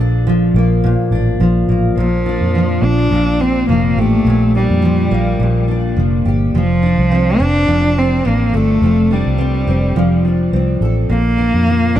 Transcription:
Already playing: A#1 A#2 F3 A#3 A4
0.00 D4
0.27 F3
0.54 A#1 A#3
0.84 A#2
1.11 A1 D4
1.40 A#1 F3
1.68 A1 A#3
1.97 A#1 A#2 F3
2.26 D4
2.41 F2
2.55 F3
2.82 A#1 D4
3.11 A#1 A#2
3.40 C4 D4
3.69 F1 F3 A#3
3.97 A1 A3 G4
4.25 A#1 A#2
4.55 G3 D4
4.70 F2
4.82 F3
5.11 A#1 A#3
5.39 A#1 A#2
5.68 D4
5.97 F1 F3
6.25 G1 G4
6.54 F1 F3
6.83 D4
6.98 C2
7.12 C4
7.40 F1 C4 D4
7.68 F1 F3
7.97 C4 D4
8.25 A1 A#3 C4
8.54 G1 A3 A4
8.82 F1 F3
9.11 G3 D4
9.26 C2
9.38 C4
9.67 F1 C4
9.96 F1 F3
10.25 D4
10.52 C2 C4
10.81 A1 A4
11.10 A#1 A#2 A#3
11.38 D4
11.54 F2
11.67 F3
11.96 A#1 A#3 D4

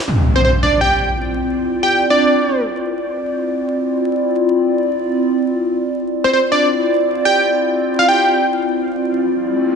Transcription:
0.07 C4 E4 F4 D5, impact
0.36 C5
0.45 C5
0.63 D5
0.81 G5
1.83 G5
2.10 D5
3.02 C4 E4 F4 D5
5.96 C4 E4 F4 D5
6.24 C5
6.33 C5
6.52 D5
7.25 G5
7.99 F5
8.09 G5
8.91 C4 E4 F4 D5, riser

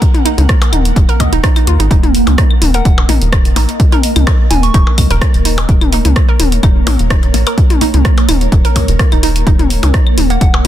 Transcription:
Already playing: A#3 A#4 F#5
0.02 kick, closed hi-hat
0.14 closed hi-hat, high tom
0.25 D#4, closed hi-hat
0.38 C#2, closed hi-hat, high tom
0.49 kick, cross-stick, closed hi-hat
0.62 closed hi-hat, percussion blips
0.73 D#1 D#4, closed hi-hat, high tom, claves
0.85 closed hi-hat
0.96 D#1, kick, closed hi-hat
1.09 A#4, closed hi-hat
1.20 C#2 D#5, kick, closed hi-hat, percussion blips
1.32 D#1 D#4, closed hi-hat
1.44 D#4, kick, cross-stick, closed hi-hat
1.56 D#4, closed hi-hat, claves
1.67 D#2 F4, closed hi-hat
1.80 G#1 D#4, closed hi-hat
1.91 D#1 D#4, kick, closed hi-hat
2.03 closed hi-hat, high tom
2.15 D#5, open hi-hat
2.27 C#2, closed hi-hat, high tom, percussion blips
2.38 D#4, kick, cross-stick, closed hi-hat
2.51 claves
2.62 D#1, open hi-hat, high tom
2.74 A#4 F#5, closed hi-hat
2.85 D#1 F#5, kick, closed hi-hat
2.98 percussion blips
3.09 A#1 D#4, open hi-hat, high tom, percussion blips
3.21 D#1, closed hi-hat
3.32 kick, cross-stick, closed hi-hat, claves
3.45 closed hi-hat
3.56 A#1 D#4, open hi-hat, percussion blips
3.69 closed hi-hat
3.80 kick, closed hi-hat
3.92 A#4, closed hi-hat, high tom
4.03 open hi-hat
4.16 C#2, closed hi-hat, high tom, claves
4.27 D#4, kick, cross-stick, closed hi-hat, percussion blips
4.50 D#1 G#5, open hi-hat, high tom
4.63 C#6, closed hi-hat
4.74 D#1 D#4 C#5 C#6, kick, closed hi-hat
4.87 percussion blips
4.98 C#2, kick, open hi-hat, claves
5.11 D#1 A#4, closed hi-hat
5.21 kick, cross-stick, closed hi-hat
5.34 D#1, closed hi-hat
5.45 D#4, open hi-hat
5.58 closed hi-hat, percussion blips
5.69 D#1, kick, closed hi-hat
5.81 closed hi-hat, high tom, claves
5.92 D#4, open hi-hat
6.05 C#2, closed hi-hat, high tom
6.16 kick, cross-stick, closed hi-hat, percussion blips
6.29 A#4
6.40 D#1, open hi-hat, high tom
6.52 closed hi-hat
6.63 D#1 D#4, kick, closed hi-hat, claves
6.87 A#1, open hi-hat, high tom, percussion blips
6.99 D#1, closed hi-hat
7.10 D#4, kick, cross-stick, closed hi-hat
7.23 closed hi-hat
7.34 A#1, open hi-hat, percussion blips
7.47 A#4, closed hi-hat, claves, percussion blips
7.58 kick, closed hi-hat
7.70 closed hi-hat, high tom
7.81 D#4, open hi-hat, percussion blips
7.94 C#2, closed hi-hat, high tom
8.05 kick, cross-stick, closed hi-hat
8.18 closed hi-hat, percussion blips
8.29 D#1 D#4, open hi-hat, high tom, claves
8.41 closed hi-hat
8.52 D#1, kick, closed hi-hat
8.65 A#4, closed hi-hat
8.76 C#2, kick, open hi-hat, percussion blips
8.88 D#1, closed hi-hat
8.99 A#3, kick, cross-stick, closed hi-hat
9.12 D#1 D#4, closed hi-hat, claves
9.23 D#4, open hi-hat
9.36 closed hi-hat
9.47 D#1 D#4, kick, closed hi-hat
9.59 closed hi-hat, high tom
9.70 open hi-hat
9.83 C#2, closed hi-hat, high tom, percussion blips
9.94 D#4, kick, cross-stick, closed hi-hat
10.07 claves
10.18 D#1, open hi-hat, high tom
10.30 A#3 F#5, closed hi-hat
10.41 D#1 F#5, kick, closed hi-hat
10.54 percussion blips

